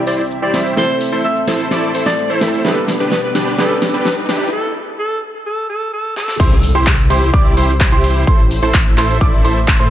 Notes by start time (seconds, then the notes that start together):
Already playing: C3 G3 C4 E4 G4 C5 E5, riser
0.07 E4 G4 C5 D5, open hi-hat, shaker
0.19 D5, shaker
0.31 shaker
0.42 E4 G4 C5 D5
0.53 G3 C4 E4 E5, snare, open hi-hat, shaker
0.66 shaker
0.76 A3 C4 E4 A4 C5, snare, shaker
1.01 open hi-hat, shaker
1.12 E4 A4 C5, shaker
1.24 E5, shaker
1.36 shaker
1.48 E4 A4 C5, snare, open hi-hat, shaker
1.60 shaker
1.71 E4 A4 D5, snare, shaker
1.83 shaker
1.94 E4 A4 C5, open hi-hat, shaker
2.06 D5, snare, shaker
2.18 shaker
2.30 E4 A4 C5
2.41 A3 C4 E4 E5, snare, open hi-hat, shaker
2.54 shaker
2.64 B2 G3 B3 D4 G4 A4 B4 D5, snare, shaker
2.88 snare, open hi-hat, shaker
3.00 D4 G4 B4, shaker
3.12 B4, snare, shaker
3.24 B4
3.35 D4 G4 B4, snare, open hi-hat, shaker
3.47 shaker
3.58 G3 B3 D4 G4 A4 B4, snare, shaker
3.82 snare, open hi-hat, shaker
3.94 D4 G4 B4, shaker
4.05 B4, snare, shaker
4.17 B4
4.29 D4 G4 B4, snare, open hi-hat, shaker
4.41 shaker
4.52 A4
4.99 A4
5.46 A4
5.70 A4
5.93 A4
6.16 A4, snare
6.28 snare
6.40 C2 E4 G4 C5 C6, kick, crash, impact, shaker
6.52 shaker
6.63 open hi-hat, shaker
6.75 C2 E4 G4 C5 C6, shaker
6.87 kick, clap, shaker
6.99 shaker
7.10 C2 E4 G4 C5 C6, open hi-hat, shaker
7.23 shaker
7.34 C2 E4 G4 D5 D6, kick, shaker
7.46 shaker
7.57 C2 E4 G4 C5 C6, open hi-hat, shaker
7.69 shaker
7.80 kick, clap, shaker
7.92 C2 E4 G4 C5 C6, shaker
8.04 open hi-hat, shaker
8.16 shaker
8.27 A1 A3 E4 A4 C5 E5 C6, kick, shaker
8.40 shaker
8.51 open hi-hat, shaker
8.62 A1 E4 A4 C5 C6, shaker
8.74 kick, clap, shaker
8.87 shaker
8.98 A1 E4 A4 C5 C6, clap, open hi-hat, shaker
9.10 shaker
9.21 A1 E4 A4 D5 D6, kick, shaker
9.33 shaker
9.44 A1 E4 A4 C5 C6, open hi-hat, shaker
9.57 shaker
9.68 kick, clap, shaker
9.80 A2 E4 A4 C5 C6, shaker